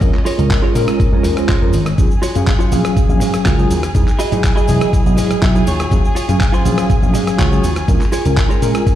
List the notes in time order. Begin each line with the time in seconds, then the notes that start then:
Already playing: C#4 D#5
0.01 A#1 G#3 C#4 F4 A#4, kick, closed hi-hat, cabasa
0.14 clap
0.25 F4 G#4 A#4 C#5, open hi-hat, cabasa
0.38 C#2 G#3 C#4 F4 A#4, closed hi-hat, cabasa
0.50 muted clean electric guitar stroke, kick, clap, closed hi-hat, cabasa
0.62 F4 G#4 A#4 C#5
0.75 A#2 G#3 C#4 F4 A#4, open hi-hat, cabasa
0.87 cross-stick, closed hi-hat, cabasa
1.00 kick, closed hi-hat, cabasa
1.12 F2 G#3 C#4 F4 A#4
1.23 D#2, muted clean electric guitar stroke, open hi-hat, cabasa
1.36 G#3 C#4 F4 C5, muted clean electric guitar stroke, cross-stick, closed hi-hat, cabasa
1.48 F4 G#4 A#4 C#5, kick, clap, closed hi-hat, cabasa
1.61 F2 G#3 C#4 F4 A#4
1.73 G#1, open hi-hat, cabasa
1.86 cross-stick, closed hi-hat, cabasa
1.98 D#2 F#3 C#4 F4 G#4 G#5, kick, closed hi-hat, cabasa, shaker
2.11 shaker
2.22 F4 F#4 G#4 C#5, open hi-hat, cabasa, shaker
2.35 F#2 F#3 C#4 G#4 F5, closed hi-hat, cabasa, shaker
2.46 muted clean electric guitar stroke, kick, clap, closed hi-hat, cabasa, shaker
2.59 F4 F#4 G#4 C#5, shaker
2.71 A#1 F#3 C#4 G#4 F5, open hi-hat, cabasa, shaker
2.85 cross-stick, closed hi-hat, cabasa, shaker
2.97 muted slap bass stroke, kick, closed hi-hat, cabasa, shaker
3.09 A#1 F#3 C#4 G#4 F5, shaker
3.20 G#2, muted clean electric guitar stroke, open hi-hat, cabasa, shaker
3.33 muted clean electric guitar stroke, cross-stick, closed hi-hat, cabasa, shaker
3.45 C#2 F4 F#4 G#4 A#4, kick, clap, closed hi-hat, cabasa, shaker
3.58 F#3 C#4 F4 G#4, shaker
3.70 D#2, open hi-hat, cabasa, shaker
3.83 cross-stick, closed hi-hat, cabasa, shaker
3.95 E2 F#3 D#4 E4 G#4, kick, closed hi-hat, cabasa, shaker
4.08 clap, shaker
4.19 E4 F#4 G#4 D#5, open hi-hat, cabasa, shaker
4.32 G#2 F#3 E4 G#4 D#5, closed hi-hat, cabasa, shaker
4.43 muted clean electric guitar stroke, kick, clap, closed hi-hat, cabasa, shaker
4.56 E4 F#4 G#4 D#5, shaker
4.68 E1 F#3 E4 G#4 D#5, open hi-hat, cabasa, shaker
4.81 cross-stick, closed hi-hat, cabasa, shaker
4.93 kick, closed hi-hat, cabasa, shaker
5.06 B1 F#3 E4 G#4 D#5, shaker
5.17 G#2, muted clean electric guitar stroke, open hi-hat, cabasa, shaker
5.29 muted clean electric guitar stroke, muted slap bass stroke, cross-stick, closed hi-hat, cabasa, shaker
5.42 B1 E4 F#4 G#4 E5, kick, clap, closed hi-hat, cabasa, shaker
5.55 F#3 D#4 E4 G#4, shaker
5.66 D#2 F4 F#4 G#4 C#5, open hi-hat, cabasa, shaker
5.79 cross-stick, closed hi-hat, cabasa, shaker
5.91 D#2 F#3 C#4 F4 G#4, kick, closed hi-hat, cabasa, shaker
6.05 shaker
6.15 F4 F#4 G#4 C#5, open hi-hat, cabasa, shaker
6.29 F#2 F#3 C#4 G#4 F5, closed hi-hat, cabasa, shaker
6.40 muted clean electric guitar stroke, kick, clap, closed hi-hat, cabasa, shaker
6.52 F4 F#4 G#4 C5, shaker
6.65 A#1 F#3 C#4 G#4 F5, open hi-hat, cabasa, shaker
6.78 cross-stick, closed hi-hat, cabasa, shaker
6.90 muted slap bass stroke, kick, closed hi-hat, cabasa, shaker
7.02 A#1 F#3 C#4 G#4 F5, shaker
7.14 G#2, muted clean electric guitar stroke, open hi-hat, cabasa, shaker
7.26 muted clean electric guitar stroke, cross-stick, closed hi-hat, cabasa, shaker
7.38 C#2 F4 F#4 G#4 C#5, kick, clap, closed hi-hat, cabasa, shaker
7.51 F#3 C#4 F4 G#4, shaker
7.64 D#2, open hi-hat, cabasa, shaker
7.76 cross-stick, closed hi-hat, cabasa, shaker
7.88 A#1 G#3 C#4 F4 A#4, kick, closed hi-hat, cabasa, shaker
8.01 clap, shaker
8.12 F4 G#4 A#4 C#5, open hi-hat, cabasa, shaker
8.25 C#2 G#3 C#4 F4 A#4, closed hi-hat, cabasa, shaker
8.37 muted clean electric guitar stroke, kick, clap, closed hi-hat, cabasa, shaker
8.49 F4 G#4 A#4 C#5, shaker
8.62 A#2 G#3 C#4 F4 A#4, open hi-hat, cabasa, shaker
8.74 cross-stick, closed hi-hat, cabasa, shaker
8.87 kick, closed hi-hat, cabasa, shaker